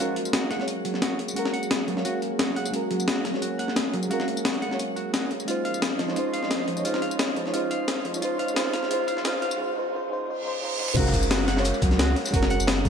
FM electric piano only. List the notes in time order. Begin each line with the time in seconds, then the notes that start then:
Already playing: G#3 C#4
0.00 F#4 A#4 F5
0.57 G#3 C#4 F#4
0.62 C#5
1.34 G#3 C#4
1.38 F#4 A#4
1.94 G#3 C#4 F5
1.98 F#4 C#5
2.71 G#3 C#4 F#4
2.76 A#4
3.31 G#3 C#4
3.35 F#4 C#5
4.08 G#3 C#4 F5
4.12 F#4 A#4
4.69 G#3 C#4
4.73 F#4 C#5
5.45 G#3 C#4 D#4
5.49 F4 C5
6.05 G#3 C#4 D#4
6.09 F4 C#5
6.14 G#3 C#4 D#4
6.18 F4 C5
6.74 G#3 C#4 D#4
6.78 G#3 F4 C#5
6.84 C#4 D#4 F4
6.88 C5
7.43 G#3 C#4 D#4
7.47 G#3 F4 C#5
7.52 C#4 D#4 F4
7.56 C5
8.11 G#3 C#4 D#4
8.15 G#3 F4 C#5
8.21 C#4 D#4 F4
8.25 C5
8.54 G#3 C#4 D#4
8.58 F4 C5
8.88 G#3 C#4 D#4
8.92 F4 C5
9.22 G#3 C#4 D#4
9.26 F4 C5
9.56 G#3 C#4 D#4
9.61 F4 C5
9.74 G#3 C#4 D#4
9.78 F4 C5
9.91 G#3 C#4 D#4
9.95 F4 C5
10.08 G#3 C#4 D#4
10.12 F4 C5
10.25 G#3 C#4 D#4
10.29 F4 C5
10.42 G#3 C#4 D#4 F4
10.48 C5
10.59 G#3 C#4 D#4
10.63 F4 C5
10.76 G#3 C#4 D#4
10.80 F4 C5
10.94 G#3 C#4 F5
10.98 F#4 A#4
11.54 G#3 C#4
11.58 F#4 C#5
12.31 G#3 C#4
12.35 F#4 A#4